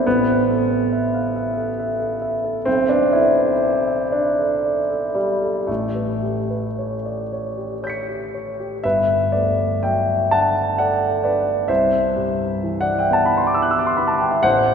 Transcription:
0.07 2.63 A1 soft
0.07 2.67 B3 medium
0.28 0.61 C5 soft
0.50 0.83 A4 soft
0.71 1.04 C5 soft
0.93 1.26 E5 soft
1.14 1.34 F5 soft
1.36 1.69 E5 soft
1.57 1.91 A4 soft
1.79 2.13 E5 soft
2.00 2.35 A4 soft
2.22 2.58 E5 soft
2.44 2.67 A4 soft
2.65 5.65 B1 soft
2.65 2.89 C4 medium
2.89 3.13 D4 medium
2.89 3.27 B4 soft
3.13 4.12 E4 medium
3.13 3.52 A4 soft
3.37 3.77 B4 soft
3.63 4.02 D5 soft
3.88 4.13 E5 soft
4.12 5.16 D4 medium
4.12 4.54 D5 soft
4.39 4.80 A4 soft
4.65 5.06 D5 soft
4.90 5.32 A4 soft
5.15 5.68 G3 medium
5.15 5.58 D5 soft
5.42 5.68 A4 soft
5.67 8.80 A1 soft
5.67 8.34 A3 medium
5.95 6.39 B4 soft
6.23 6.66 G4 soft
6.50 6.94 B4 soft
6.78 7.21 C#5 soft
7.05 7.31 D5 soft
7.32 7.73 C#5 soft
7.57 7.98 G4 soft
7.83 8.24 C#5 soft
7.83 8.81 G6 soft
7.83 8.82 B6 soft
7.90 8.84 C#7 soft
8.09 8.50 G4 soft
8.34 8.75 C#5 soft
8.60 8.84 G4 soft
8.84 11.66 G1 soft
8.84 9.30 B4 medium
8.84 9.32 E5 medium
9.32 10.12 D2 soft
9.32 9.79 B4 soft
9.32 9.82 D5 medium
9.83 10.59 F#3 soft
9.83 10.28 E5 soft
9.83 10.31 G5 medium
10.31 11.05 D4 soft
10.31 10.75 F#5 medium
10.31 10.78 A5 medium
10.78 11.52 A4 soft
10.78 11.21 D5 soft
10.78 11.24 F#5 medium
11.24 11.70 D4 soft
11.24 11.67 B4 soft
11.24 11.69 D5 medium
11.68 14.41 C2 soft
11.68 12.77 C5 medium
11.68 12.80 E5 medium
12.17 12.91 G2 soft
12.63 13.37 E3 soft
12.81 12.98 D5 soft
12.81 12.99 F#5 medium
12.99 13.13 E5 soft
12.99 13.14 G5 medium
13.10 13.83 B3 soft
13.10 13.26 A5 medium
13.14 13.26 F#5 medium
13.26 13.37 B5 medium
13.37 13.47 C6 medium
13.47 13.56 D6 medium
13.55 14.27 E4 soft
13.55 13.64 E6 medium
13.62 13.72 F#6 medium
13.71 13.80 E6 medium
13.79 13.89 D6 medium
13.87 13.98 C6 medium
13.97 14.44 B3 soft
13.97 14.09 B5 medium
14.08 14.20 A5 medium
14.19 14.32 G5 medium
14.31 14.44 E5 medium
14.43 14.74 A1 medium
14.43 14.74 C5 medium
14.43 14.74 F#5 medium

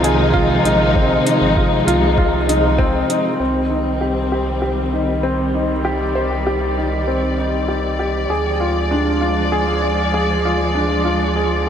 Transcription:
0.00 0.59 C2 loud
0.00 3.37 C3 medium
0.00 3.37 D#3 medium
0.00 3.37 F3 medium
0.00 3.37 G#3 medium
0.00 0.96 C4 medium
0.00 0.65 D#4 medium
0.00 3.36 D#4 medium
0.00 0.34 F4 medium
0.00 0.33 G#4 medium
0.04 closed hi-hat medium
0.34 0.63 F4 loud
0.34 kick medium
0.65 1.20 A#1 medium
0.65 0.94 D#4 medium
0.65 closed hi-hat medium
0.95 1.25 C4 medium
0.95 kick loud
1.26 1.55 D#4 medium
1.26 closed hi-hat medium
1.41 1.81 G#1 medium
1.57 1.74 F4 medium
1.57 kick loud
1.87 3.03 C2 loud
1.87 2.16 F4 medium
1.87 closed hi-hat medium
2.18 2.35 F4 medium
2.18 kick medium
2.49 2.66 D#4 medium
2.49 closed hi-hat medium
2.78 3.08 C4 loud
2.78 kick loud
3.09 3.27 D#4 medium
3.09 closed hi-hat medium
3.39 8.27 C2 medium
3.39 8.26 D#3 medium
3.39 8.26 G3 medium
3.39 5.83 C4 medium
3.39 3.69 C4 medium
3.70 4.00 D#4 medium
4.01 4.19 G4 medium
4.32 4.60 G4 medium
4.62 4.80 G4 medium
4.93 5.11 D#4 medium
5.23 5.53 C4 medium
5.54 5.72 D#4 medium
5.85 6.02 G4 medium
5.85 11.69 D5 medium
6.15 6.45 C5 medium
6.47 6.76 G4 medium
6.77 7.06 D#4 medium
7.07 7.37 C4 medium
7.38 7.67 D#4 medium
7.68 7.86 G4 medium
7.99 8.29 G4 medium
8.29 11.69 D2 medium
8.29 11.69 F3 medium
8.29 11.69 G#3 medium
8.29 8.48 G#4 medium
8.60 8.78 F4 medium
8.91 9.20 D4 medium
9.21 9.39 F4 medium
9.52 9.70 G#4 medium
9.82 10.12 D5 medium
10.14 10.43 G#4 medium
10.45 10.74 F4 medium
10.75 11.04 D4 medium
11.05 11.34 F4 medium
11.36 11.54 G#4 medium

